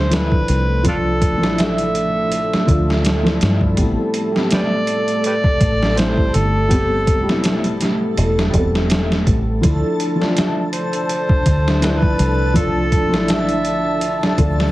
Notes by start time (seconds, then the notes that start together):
Already playing: D2 F3 A3 D4 F4 A4 C5
0.10 F3 A3 D4, snare, closed hi-hat
0.14 E4 B4
0.32 kick
0.48 C2, closed hi-hat
0.83 F3 A3 D4, kick, closed hi-hat
0.88 D4 F4 A4
1.21 kick, closed hi-hat
1.38 F3 A3
1.42 A1 D4, snare
1.47 E4
1.58 E5, snare, closed hi-hat
1.78 closed hi-hat
1.95 closed hi-hat
2.32 closed hi-hat
2.53 snare
2.67 D2 F3 A3 D4, kick, closed hi-hat
2.71 F4
2.90 snare
3.05 snare, closed hi-hat
3.23 F3 A3 D4, snare
3.28 E4
3.41 G2, snare, closed hi-hat
3.61 kick
3.76 A1 G3 B3 C4, kick, closed hi-hat
3.80 E4
4.14 closed hi-hat
4.31 G3 B3
4.36 C4 G4, snare
4.51 G4 B4 D5, snare, closed hi-hat
4.87 closed hi-hat
5.08 closed hi-hat
5.24 G4 B4 D5, closed hi-hat
5.44 kick
5.60 A1, kick, closed hi-hat
5.83 snare
5.95 G3 A3 C4 C5, snare, closed hi-hat
6.00 E4
6.17 kick
6.34 G1 A4, closed hi-hat
6.68 G3 B3 C4, kick, closed hi-hat
6.73 G4
7.07 kick, closed hi-hat
7.23 G3 B3
7.28 E1 C4 E4, snare
7.44 snare, closed hi-hat
7.64 closed hi-hat
7.81 snare, closed hi-hat
8.17 E1, closed hi-hat
8.39 snare
8.50 G3 B3, kick
8.54 E1 C4, closed hi-hat
8.58 A4
8.75 snare
8.90 snare, closed hi-hat
9.12 snare
9.27 A1, kick, closed hi-hat
9.61 D2 F3 A3 D4 E4 A5, kick, closed hi-hat
10.00 closed hi-hat
10.16 F3 A3
10.21 D4 F4, snare
10.37 snare, closed hi-hat
10.73 C5, closed hi-hat
10.93 closed hi-hat
11.09 closed hi-hat
11.29 kick
11.46 D2, kick, closed hi-hat
11.68 snare
11.81 F3 A3 D4 B4, snare, closed hi-hat
11.85 E4
11.91 C5
11.98 B4
12.02 kick
12.19 C2, closed hi-hat
12.54 F3 A3 D4 A4, kick, closed hi-hat
12.58 F4
12.92 kick, closed hi-hat
13.09 A1 F3 A3
13.14 D4 E4, snare
13.28 E5, snare, closed hi-hat
13.49 closed hi-hat
13.65 closed hi-hat
14.01 closed hi-hat
14.23 snare
14.37 D2 F3 A3 D4 F4, kick, closed hi-hat
14.60 snare